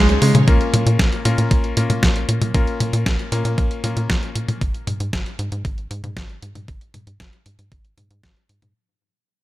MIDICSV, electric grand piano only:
0, 0, Header, 1, 2, 480
1, 0, Start_track
1, 0, Key_signature, -5, "minor"
1, 0, Tempo, 517241
1, 442, Time_signature, 4, 2, 24, 8
1, 8754, End_track
2, 0, Start_track
2, 0, Title_t, "Electric grand piano"
2, 0, Program_c, 0, 2
2, 0, Note_on_c, 0, 61, 77
2, 0, Note_on_c, 0, 63, 69
2, 0, Note_on_c, 0, 65, 72
2, 0, Note_on_c, 0, 68, 87
2, 413, Note_off_c, 0, 61, 0
2, 414, Note_off_c, 0, 63, 0
2, 414, Note_off_c, 0, 65, 0
2, 414, Note_off_c, 0, 68, 0
2, 443, Note_on_c, 0, 58, 86
2, 443, Note_on_c, 0, 61, 76
2, 443, Note_on_c, 0, 65, 77
2, 443, Note_on_c, 0, 70, 94
2, 1134, Note_off_c, 0, 58, 0
2, 1134, Note_off_c, 0, 61, 0
2, 1134, Note_off_c, 0, 65, 0
2, 1134, Note_off_c, 0, 70, 0
2, 1162, Note_on_c, 0, 58, 90
2, 1162, Note_on_c, 0, 70, 99
2, 1163, Note_on_c, 0, 61, 81
2, 1163, Note_on_c, 0, 65, 83
2, 1613, Note_off_c, 0, 58, 0
2, 1613, Note_off_c, 0, 70, 0
2, 1614, Note_off_c, 0, 61, 0
2, 1614, Note_off_c, 0, 65, 0
2, 1642, Note_on_c, 0, 58, 76
2, 1642, Note_on_c, 0, 61, 70
2, 1642, Note_on_c, 0, 65, 72
2, 1642, Note_on_c, 0, 70, 84
2, 2333, Note_off_c, 0, 58, 0
2, 2333, Note_off_c, 0, 61, 0
2, 2333, Note_off_c, 0, 65, 0
2, 2333, Note_off_c, 0, 70, 0
2, 2362, Note_on_c, 0, 58, 82
2, 2362, Note_on_c, 0, 61, 75
2, 2362, Note_on_c, 0, 65, 77
2, 2362, Note_on_c, 0, 70, 94
2, 3053, Note_off_c, 0, 58, 0
2, 3053, Note_off_c, 0, 61, 0
2, 3053, Note_off_c, 0, 65, 0
2, 3053, Note_off_c, 0, 70, 0
2, 3082, Note_on_c, 0, 58, 85
2, 3082, Note_on_c, 0, 61, 81
2, 3082, Note_on_c, 0, 65, 78
2, 3082, Note_on_c, 0, 70, 99
2, 3533, Note_off_c, 0, 58, 0
2, 3533, Note_off_c, 0, 61, 0
2, 3533, Note_off_c, 0, 65, 0
2, 3533, Note_off_c, 0, 70, 0
2, 3562, Note_on_c, 0, 58, 75
2, 3562, Note_on_c, 0, 61, 69
2, 3562, Note_on_c, 0, 65, 71
2, 3562, Note_on_c, 0, 70, 83
2, 4253, Note_off_c, 0, 58, 0
2, 4253, Note_off_c, 0, 61, 0
2, 4253, Note_off_c, 0, 65, 0
2, 4253, Note_off_c, 0, 70, 0
2, 8754, End_track
0, 0, End_of_file